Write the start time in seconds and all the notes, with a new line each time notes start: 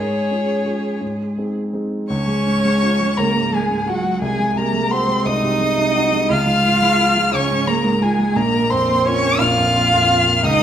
Already playing: G#2 C#4 G#4 C#5
0.31 C#4 F4 G#4
0.65 C#4 F4 G#4
1.01 G#2
1.38 C4 D#4 G#4
1.73 C4 D#4 G#4
2.09 C#2 C#4 C#5 C#6
2.28 G#3
2.47 G#2
2.65 G#3
2.83 F4
3.01 G#3
3.17 C#2 A#3 A#4 A#5
3.36 G#2
3.53 G#3 G#4 G#5
3.70 G#2
3.86 F#3 F4 F#4 F#5
4.05 G#3
4.22 C2 G#3 G#4 G#5
4.39 G#3
4.56 C3 A#3 A#4 A#5
4.73 G#3
4.91 C4 F#4 C5 C6
5.08 G#3
5.25 C2 D#4 D#5 D#6
5.43 C3
5.60 G#3
5.77 C3
5.96 F#4
6.12 G#3
6.30 C#2 F4 F5 F6
6.46 G#3
6.64 G#2
6.82 G#3
7.00 F4
7.16 G#3
7.33 C#2 C#4 C#5 C#6
7.51 G#2
7.66 G#3 A#3 A#4 A#5
7.84 G#2
8.02 G#3 F4 G#4 G#5
8.19 G#3
8.35 A#1 A#3 A#4 A#5
8.54 A#3
8.70 F2 C4 C5 C6
8.90 A#3
9.05 C#4 F4 C#5 C#6
9.25 A#3
9.39 A#1 F4 F5 F6
9.58 F2
9.77 A#3
9.93 F2
10.10 F4
10.26 A#3
10.43 C#2 D#4 D#5 D#6